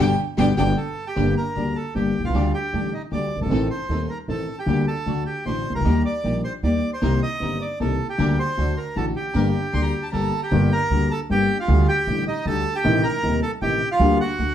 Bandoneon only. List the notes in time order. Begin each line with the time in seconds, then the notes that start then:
0.77 A4 A5
1.07 G4 G5
1.37 A#4 A#5
1.76 A4 A5
1.96 G4 G5
2.25 F4 F5
2.54 G4 G5
2.94 D#4 D#5
3.13 D5 D6
3.42 A4 A5
3.71 C5 C6
4.10 A#4 A#5
4.29 A4 A5
4.59 G4 G5
4.88 A4 A5
5.26 G4 G5
5.46 C5 C6
5.75 A#4 A#5
6.05 D5 D6
6.44 C5 C6
6.64 D5 D6
6.94 C5 C6
7.23 D#5 D#6
7.62 D5 D6
7.81 A4 A5
8.10 G4 G5
8.39 C5 C6
8.77 A#4 A#5
8.97 A4 A5
9.16 G4 G5
10.13 A4 A5
10.43 G4 G5
10.73 A#4 A#5
11.11 A4 A5
11.31 G4 G5
11.60 F4 F5
11.88 G4 G5
12.28 D#4 D#5
12.47 A4 A5
12.76 G4 G5
13.03 A#4 A#5
13.43 A4 A5
13.62 G4 G5
13.92 F4 F5
14.20 F#4 F#5